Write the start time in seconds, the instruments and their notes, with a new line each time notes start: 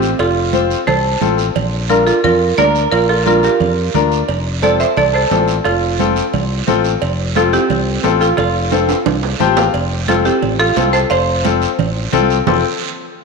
Already playing: fingered electric bass A1, marimba C4 G4, clean electric guitar C4
0.02 short guiro
0.19 fingered electric bass F1, marimba F4 A4, clean electric guitar F4, cowbell, high conga, long guiro
0.53 upright piano C4 F4 C5, high conga, short guiro
0.70 short guiro
0.87 fingered electric bass C2, clean electric guitar A4, marimba A4 C5, cowbell, high conga, low conga, long guiro
1.21 fingered electric bass A1, upright piano C4 F4 A4, high conga, low conga, short guiro
1.38 short guiro
1.55 fingered electric bass A#1, cowbell, high conga, low conga, long guiro
1.89 upright piano D4 F4 A#4, marimba F4 A#4, clean electric guitar F4, high conga, short guiro
2.07 marimba F4 A4, clean electric guitar F4, short guiro
2.24 fingered electric bass F2, clean electric guitar F4, marimba F4 A#4, cowbell, high conga, low conga, long guiro
2.58 fingered electric bass D2, upright piano D4 F4 A#4, clean electric guitar A#4, marimba A#4 D5, high conga, low timbale, short guiro
2.75 short guiro
2.92 fingered electric bass A#1, clean electric guitar F4, marimba F4 A#4, cowbell, long guiro
3.09 marimba F4 A4, clean electric guitar F4
3.26 upright piano D4 F4 A#4, clean electric guitar F4, marimba F4 A#4, high conga, short guiro
3.43 clean electric guitar F4, marimba G4 A#4, short guiro
3.60 fingered electric bass F2, cowbell, high conga, low conga, long guiro
3.94 fingered electric bass D2, upright piano D4 F4 A#4, high conga, low conga, short guiro
4.12 short guiro
4.28 fingered electric bass F1, cowbell, high conga, long guiro
4.62 upright piano C4 F4 A4, clean electric guitar A4, marimba A4 D5, high conga, short guiro
4.80 clean electric guitar C5, marimba C5 E5, short guiro
4.97 fingered electric bass C2, clean electric guitar A4, marimba A4 D5, cowbell, high conga, low conga, long guiro
5.13 clean electric guitar A4, marimba A4 C5
5.31 fingered electric bass A1, upright piano C4 F4 A4, high conga, low timbale, short guiro
5.48 short guiro
5.64 fingered electric bass F1, clean electric guitar F4, marimba F4 A4, cowbell, high conga, long guiro
5.99 upright piano C4 F4 A4, high conga, short guiro
6.16 short guiro
6.33 fingered electric bass C2, cowbell, high conga, low conga, long guiro
6.67 fingered electric bass A1, upright piano C4 F4 A4, high conga, low conga, low timbale, short guiro
6.84 short guiro
7.02 fingered electric bass F1, cowbell, high conga, long guiro
7.35 upright piano C4 F4 A4, clean electric guitar F4, marimba F4 A4, high conga, short guiro
7.53 clean electric guitar C4, marimba E4 G4, short guiro
7.70 fingered electric bass C2, cowbell, high conga, low conga, long guiro
8.03 fingered electric bass A1, upright piano C4 F4 A4, high conga, low timbale, short guiro
8.21 marimba F4 A4, clean electric guitar F4, short guiro
8.37 fingered electric bass F1, marimba F4 A4, clean electric guitar F4, cowbell, high conga, low conga, long guiro
8.72 upright piano C4 F4 A4, high conga, high timbale, short guiro
8.89 high timbale, short guiro
9.06 fingered electric bass C2, cowbell, high conga, low conga, high timbale, long guiro
9.23 low timbale
9.40 fingered electric bass A1, upright piano C4 F4 G4 A5, high conga, low conga, short guiro
9.57 upright piano F5, low timbale, short guiro
9.74 fingered electric bass F1, cowbell, high conga, long guiro
10.08 upright piano C4 F4 A4, clean electric guitar F4, marimba F4 A4, cowbell, high conga, short guiro
10.25 clean electric guitar C4, marimba E4 G4, short guiro
10.42 fingered electric bass A1, cowbell, high conga, low conga, long guiro
10.59 clean electric guitar F4, marimba F4 A4
10.76 fingered electric bass C2, upright piano C4 F4 A4, cowbell, high conga, low timbale, short guiro
10.93 clean electric guitar A4, marimba A4 C5, short guiro
11.10 fingered electric bass F1, clean electric guitar C5, marimba C5 F5, cowbell, high conga, long guiro
11.44 upright piano C4 F4 A4, cowbell, high conga, short guiro
11.62 short guiro
11.79 fingered electric bass A1, cowbell, high conga, low conga, long guiro
12.12 fingered electric bass C2, upright piano C4 F4 A4, cowbell, high conga, low conga, short guiro
12.30 short guiro
12.47 fingered electric bass F1, upright piano C4 F4 A4, low conga, low timbale, long guiro